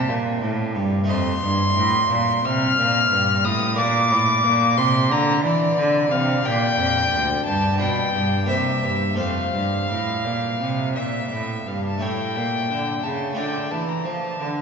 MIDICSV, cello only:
0, 0, Header, 1, 2, 480
1, 0, Start_track
1, 0, Key_signature, -1, "major"
1, 0, Tempo, 671141
1, 780, Time_signature, 4, 2, 24, 8
1, 5581, Tempo, 703400
1, 8461, Tempo, 675676
1, 10303, End_track
2, 0, Start_track
2, 0, Title_t, "Cello"
2, 0, Program_c, 0, 42
2, 0, Note_on_c, 0, 48, 103
2, 61, Note_on_c, 0, 46, 94
2, 72, Note_off_c, 0, 48, 0
2, 296, Note_off_c, 0, 46, 0
2, 301, Note_on_c, 0, 45, 93
2, 537, Note_on_c, 0, 43, 102
2, 548, Note_off_c, 0, 45, 0
2, 773, Note_off_c, 0, 43, 0
2, 777, Note_on_c, 0, 41, 101
2, 1001, Note_off_c, 0, 41, 0
2, 1017, Note_on_c, 0, 43, 97
2, 1253, Note_off_c, 0, 43, 0
2, 1257, Note_on_c, 0, 45, 98
2, 1495, Note_off_c, 0, 45, 0
2, 1500, Note_on_c, 0, 46, 93
2, 1745, Note_off_c, 0, 46, 0
2, 1750, Note_on_c, 0, 48, 101
2, 1989, Note_off_c, 0, 48, 0
2, 1993, Note_on_c, 0, 46, 97
2, 2221, Note_off_c, 0, 46, 0
2, 2225, Note_on_c, 0, 43, 98
2, 2462, Note_on_c, 0, 45, 102
2, 2473, Note_off_c, 0, 43, 0
2, 2700, Note_on_c, 0, 46, 111
2, 2711, Note_off_c, 0, 45, 0
2, 2941, Note_on_c, 0, 45, 97
2, 2952, Note_off_c, 0, 46, 0
2, 3172, Note_off_c, 0, 45, 0
2, 3176, Note_on_c, 0, 46, 102
2, 3413, Note_on_c, 0, 48, 99
2, 3424, Note_off_c, 0, 46, 0
2, 3651, Note_on_c, 0, 50, 109
2, 3662, Note_off_c, 0, 48, 0
2, 3889, Note_on_c, 0, 52, 96
2, 3899, Note_off_c, 0, 50, 0
2, 4124, Note_off_c, 0, 52, 0
2, 4128, Note_on_c, 0, 50, 91
2, 4363, Note_off_c, 0, 50, 0
2, 4367, Note_on_c, 0, 48, 96
2, 4607, Note_off_c, 0, 48, 0
2, 4612, Note_on_c, 0, 46, 100
2, 4847, Note_off_c, 0, 46, 0
2, 4852, Note_on_c, 0, 41, 84
2, 5088, Note_off_c, 0, 41, 0
2, 5093, Note_on_c, 0, 38, 88
2, 5332, Note_off_c, 0, 38, 0
2, 5337, Note_on_c, 0, 43, 89
2, 5578, Note_on_c, 0, 47, 93
2, 5588, Note_off_c, 0, 43, 0
2, 5806, Note_off_c, 0, 47, 0
2, 5810, Note_on_c, 0, 43, 87
2, 6041, Note_off_c, 0, 43, 0
2, 6045, Note_on_c, 0, 48, 81
2, 6281, Note_off_c, 0, 48, 0
2, 6284, Note_on_c, 0, 43, 79
2, 6517, Note_off_c, 0, 43, 0
2, 6521, Note_on_c, 0, 41, 84
2, 6762, Note_off_c, 0, 41, 0
2, 6769, Note_on_c, 0, 43, 74
2, 7004, Note_off_c, 0, 43, 0
2, 7008, Note_on_c, 0, 45, 81
2, 7249, Note_on_c, 0, 46, 84
2, 7259, Note_off_c, 0, 45, 0
2, 7485, Note_off_c, 0, 46, 0
2, 7489, Note_on_c, 0, 48, 82
2, 7731, Note_on_c, 0, 46, 74
2, 7741, Note_off_c, 0, 48, 0
2, 7967, Note_off_c, 0, 46, 0
2, 7971, Note_on_c, 0, 45, 81
2, 8210, Note_off_c, 0, 45, 0
2, 8214, Note_on_c, 0, 43, 80
2, 8453, Note_off_c, 0, 43, 0
2, 8461, Note_on_c, 0, 45, 76
2, 8704, Note_on_c, 0, 46, 72
2, 8714, Note_off_c, 0, 45, 0
2, 8944, Note_off_c, 0, 46, 0
2, 8947, Note_on_c, 0, 50, 71
2, 9178, Note_off_c, 0, 50, 0
2, 9182, Note_on_c, 0, 49, 72
2, 9421, Note_on_c, 0, 50, 74
2, 9431, Note_off_c, 0, 49, 0
2, 9657, Note_off_c, 0, 50, 0
2, 9661, Note_on_c, 0, 52, 65
2, 9896, Note_off_c, 0, 52, 0
2, 9905, Note_on_c, 0, 53, 69
2, 10138, Note_off_c, 0, 53, 0
2, 10141, Note_on_c, 0, 50, 75
2, 10303, Note_off_c, 0, 50, 0
2, 10303, End_track
0, 0, End_of_file